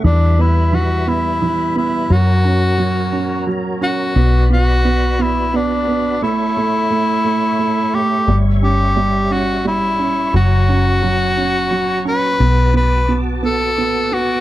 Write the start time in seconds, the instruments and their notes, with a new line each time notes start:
Already playing: tonewheel organ E5
0.04 fingered electric bass E2, felt piano E3, tonewheel organ G3 B4 B5, tenor saxophone D4
0.39 felt piano B3, tenor saxophone E4
0.73 felt piano E3, tenor saxophone F#4
1.07 felt piano B3, tenor saxophone E4
1.42 felt piano E3
1.76 felt piano B3, tenor saxophone E4
2.10 fingered electric bass F#2, felt piano F#3, tonewheel organ F#4 A#4 C#5 A#5, tenor saxophone F#4
2.45 felt piano C#4
2.78 felt piano F#3
3.12 felt piano C#4
3.47 felt piano F#3
3.81 felt piano C#4, tenor saxophone F#4
4.15 fingered electric bass B1, felt piano B3, tonewheel organ F#4 B4 D5 B5
4.50 felt piano B3, tenor saxophone F#4
4.85 felt piano B3
5.19 felt piano B3, tenor saxophone E4
5.54 felt piano B3, tenor saxophone D4
5.87 felt piano B3
6.21 fingered electric bass A1, felt piano A3, tenor saxophone E4, tonewheel organ A4 C#5 E5 C#6
6.57 felt piano A3
6.91 felt piano A3
7.25 felt piano A3
7.59 felt piano A3
7.94 felt piano A3, tenor saxophone G4
8.28 fingered electric bass G1, tonewheel organ G3 E5, felt piano G3
8.62 felt piano C#4, tenor saxophone G4
8.96 felt piano G3
9.31 felt piano C#4, tenor saxophone F#4
9.65 felt piano G3, tenor saxophone E4
9.99 felt piano C#4
10.33 fingered electric bass F#1, felt piano F#3, tonewheel organ F#4 C#5 A#5, tenor saxophone F#4
10.69 felt piano C#4
11.03 felt piano F#3
11.37 felt piano C#4
11.71 felt piano F#3
12.05 felt piano C#4, tenor saxophone B4
12.39 fingered electric bass B1, felt piano B3, tonewheel organ B4 A5 D6
12.74 felt piano B3, tenor saxophone B4
13.08 felt piano B3
13.43 felt piano B3, tenor saxophone A4
13.78 felt piano B3
14.12 felt piano B3, tenor saxophone F#4